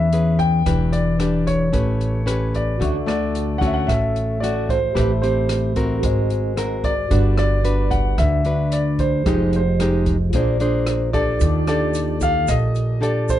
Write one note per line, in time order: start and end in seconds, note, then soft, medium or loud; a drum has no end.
0.00 0.62 E2 medium
0.00 0.64 E3 medium
0.00 0.36 E5 medium
0.13 0.62 C#4 medium
0.13 0.62 G#4 medium
0.13 0.63 B4 medium
0.13 closed hi-hat soft
0.39 0.94 G5 loud
0.39 kick soft
0.39 closed hi-hat soft
0.66 1.69 E1 medium
0.66 1.71 E3 medium
0.66 1.15 D4 soft
0.66 1.15 G4 soft
0.66 1.16 B4 medium
0.66 kick medium
0.66 cross-stick medium
0.66 closed hi-hat soft
0.92 1.48 D5 medium
0.92 closed hi-hat soft
1.19 1.69 D4 medium
1.19 1.69 G4 soft
1.19 1.69 B4 medium
1.19 cross-stick medium
1.19 closed hi-hat soft
1.46 2.50 C#5 medium
1.46 kick soft
1.46 closed hi-hat soft
1.72 2.77 A1 medium
1.72 2.78 A3 medium
1.72 2.22 C#4 medium
1.72 2.23 G4 medium
1.72 2.23 B4 medium
1.72 kick medium
1.72 closed hi-hat soft
2.01 closed hi-hat soft
2.26 2.78 C#4 soft
2.26 2.79 G4 medium
2.26 2.78 B4 medium
2.26 cross-stick medium
2.26 closed hi-hat soft
2.54 3.06 D5 medium
2.54 kick soft
2.54 closed hi-hat soft
2.78 3.84 D2 medium
2.78 3.85 D3 medium
2.78 2.96 A3 medium
2.78 2.96 C#4 medium
2.78 4.37 F#4 soft
2.78 2.96 F#4 medium
2.78 4.38 A4 soft
2.78 kick medium
2.78 closed hi-hat soft
2.82 4.40 E5 soft
2.82 4.39 C#6 soft
3.06 3.56 A3 medium
3.06 3.57 F#4 medium
3.06 3.63 D5 medium
3.06 cross-stick medium
3.06 closed hi-hat soft
3.35 closed hi-hat soft
3.58 4.37 A3 medium
3.58 4.38 C#4 medium
3.58 4.38 F#4 medium
3.58 3.67 F#5 medium
3.58 kick medium
3.62 3.74 E5 medium
3.62 closed hi-hat soft
3.73 3.88 F#5 medium
3.87 4.92 A1 medium
3.87 4.93 A2 medium
3.87 4.37 E5 medium
3.87 kick medium
3.87 cross-stick medium
3.87 closed hi-hat soft
4.16 closed hi-hat soft
4.40 4.78 A3 medium
4.40 4.78 C#4 medium
4.40 4.95 F#4 soft
4.40 4.79 F#4 medium
4.40 4.96 A4 soft
4.40 4.96 C#5 soft
4.40 4.69 D5 medium
4.40 4.97 E5 soft
4.40 closed hi-hat soft
4.69 5.20 C5 medium
4.69 kick medium
4.69 closed hi-hat soft
4.93 5.99 A1 loud
4.93 6.00 A3 medium
4.93 5.11 C4 soft
4.93 5.99 G4 soft
4.93 5.11 G4 medium
4.93 5.12 B4 medium
4.93 6.00 B5 soft
4.93 kick medium
4.93 cross-stick medium
4.93 closed hi-hat soft
4.99 6.02 E5 soft
5.22 5.72 C4 medium
5.22 5.72 G4 medium
5.22 5.72 C5 medium
5.22 closed hi-hat soft
5.49 cross-stick medium
5.49 closed hi-hat soft
5.76 6.52 C4 medium
5.76 6.53 F#4 medium
5.76 6.53 A#4 medium
5.76 kick medium
5.76 closed hi-hat soft
6.00 7.06 G#1 medium
6.00 7.08 G#3 medium
6.00 7.07 F#4 medium
6.00 7.08 A#4 medium
6.00 7.08 C5 medium
6.00 kick medium
6.00 closed hi-hat soft
6.06 7.10 D#5 medium
6.30 closed hi-hat soft
6.57 6.93 C4 soft
6.57 6.93 F#4 medium
6.57 6.94 A#4 medium
6.57 cross-stick medium
6.57 closed hi-hat soft
6.84 7.37 D5 medium
6.84 kick medium
6.84 closed hi-hat soft
7.08 8.14 G1 loud
7.08 8.16 G3 medium
7.08 7.60 D4 medium
7.08 9.21 F#4 soft
7.08 7.60 F#4 medium
7.08 9.21 A4 soft
7.08 7.61 B4 medium
7.08 9.22 B4 soft
7.08 kick medium
7.08 closed hi-hat soft
7.14 9.23 D5 soft
7.38 7.93 D5 loud
7.38 cross-stick medium
7.38 closed hi-hat soft
7.64 8.41 D4 medium
7.64 8.40 F#4 medium
7.64 8.41 B4 medium
7.64 closed hi-hat soft
7.91 8.16 F#5 medium
7.91 kick medium
7.91 closed hi-hat soft
8.18 9.22 D2 medium
8.18 9.24 D3 medium
8.18 8.73 E5 medium
8.18 kick medium
8.18 cross-stick medium
8.18 closed hi-hat soft
8.45 9.21 D4 medium
8.45 9.22 F#4 medium
8.45 9.22 B4 medium
8.45 closed hi-hat soft
8.72 9.00 D5 medium
8.72 closed hi-hat soft
8.99 9.55 C5 medium
8.99 kick soft
8.99 closed hi-hat soft
9.24 10.29 F1 loud
9.24 10.31 F3 medium
9.24 9.61 G#3 medium
9.24 9.61 D#4 medium
9.24 10.30 G4 soft
9.24 9.61 G4 medium
9.24 10.31 G#4 soft
9.24 10.32 C5 soft
9.24 kick medium
9.24 cross-stick medium
9.24 closed hi-hat soft
9.30 10.33 D#5 medium
9.53 10.04 C5 medium
9.53 closed hi-hat soft
9.80 10.16 G#3 medium
9.80 10.17 D#4 soft
9.80 10.16 G4 medium
9.80 cross-stick medium
9.80 closed hi-hat soft
10.06 kick medium
10.06 closed hi-hat soft
10.30 11.37 A#1 medium
10.30 11.37 F4 medium
10.30 kick medium
10.30 closed hi-hat soft
10.35 11.39 A#3 medium
10.35 10.56 D4 medium
10.35 10.57 G#4 medium
10.35 11.39 C5 soft
10.35 10.57 C5 medium
10.35 11.40 D5 medium
10.60 11.10 D4 medium
10.60 11.10 G#4 medium
10.60 11.10 C5 medium
10.60 closed hi-hat soft
10.87 cross-stick medium
10.87 closed hi-hat soft
11.13 11.67 D4 medium
11.13 11.68 G4 medium
11.13 11.67 A4 medium
11.13 11.66 D5 loud
11.13 kick medium
11.13 closed hi-hat soft
11.39 12.44 D#2 loud
11.39 12.46 D#3 medium
11.39 13.39 F4 soft
11.39 13.39 G4 soft
11.39 kick medium
11.39 closed hi-hat soft
11.39 shaker medium
11.43 13.39 A4 soft
11.43 13.39 D6 medium
11.67 12.17 D4 medium
11.67 12.18 G4 medium
11.67 12.18 A4 medium
11.67 12.18 D5 loud
11.67 cross-stick medium
11.67 closed hi-hat soft
11.67 shaker soft
11.94 closed hi-hat soft
11.94 shaker medium
12.21 12.98 G4 medium
12.21 12.98 A4 medium
12.21 12.50 F5 medium
12.21 kick medium
12.21 closed hi-hat soft
12.21 shaker medium
12.48 13.39 A#1 medium
12.48 13.39 A#2 medium
12.48 12.99 D#5 medium
12.48 kick soft
12.48 cross-stick medium
12.48 closed hi-hat soft
12.48 shaker medium
12.75 closed hi-hat soft
12.75 shaker soft
13.01 13.39 D4 soft
13.01 13.39 G4 soft
13.01 13.39 A4 medium
13.01 13.30 D5 medium
13.01 closed hi-hat soft
13.29 13.39 C5 loud
13.29 kick medium
13.29 closed hi-hat soft
13.29 shaker medium